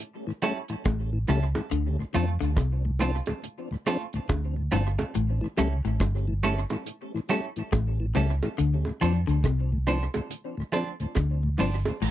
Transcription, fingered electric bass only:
0.86 1.24 A1 medium
1.29 1.53 C#2 medium
1.72 1.95 D2 loud
2.15 2.39 F2 medium
2.42 2.56 D2 medium
2.57 3.19 C2 medium
4.30 4.68 D2 medium
4.73 4.96 G1 medium
5.16 5.39 A1 medium
5.59 5.82 C#2 medium
5.85 5.99 A1 medium
6.01 6.63 G1 medium
7.73 8.11 A1 loud
8.17 8.40 C#2 medium
8.60 8.83 D2 medium
9.03 9.26 F2 medium
9.29 9.43 D2 medium
9.44 10.06 C2 medium
11.17 11.55 D2 medium
11.60 11.83 G1 medium
12.02 12.11 A1 medium

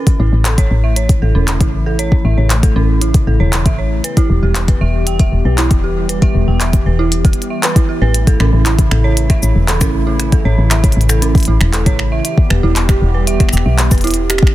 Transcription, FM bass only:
0.20 0.30 A1 loud
0.33 0.68 A1 loud
0.71 1.19 A1 medium
1.22 1.33 A1 medium
1.35 1.62 E1 medium
1.61 2.21 A1 medium
2.25 2.35 A1 loud
2.38 2.73 A1 loud
2.76 3.24 A1 medium
3.27 3.38 A1 medium
3.40 3.67 E1 medium
3.66 4.01 A1 medium
4.30 4.41 E1 loud
4.43 4.78 E1 medium
4.81 5.29 E1 medium
5.32 5.43 E1 medium
5.45 5.72 B1 medium
5.71 6.32 E1 medium
6.35 6.46 E1 loud
6.48 6.83 E1 medium
6.86 7.34 E1 medium
8.02 8.37 A1 medium
8.40 8.51 A1 loud
8.53 8.88 A1 loud
8.91 9.39 A1 medium
9.43 9.53 A1 medium
9.55 9.83 E1 medium
9.81 10.42 A1 loud
10.45 10.56 A1 loud
10.58 10.93 A1 loud
10.97 11.44 A1 medium
11.48 11.58 A1 medium
11.61 11.88 E1 medium
11.86 12.21 A1 loud
12.50 12.61 E1 loud
12.63 12.98 E1 loud
13.02 13.50 E1 medium
13.53 13.64 E1 medium
13.66 13.93 B1 medium
13.91 14.52 E1 loud

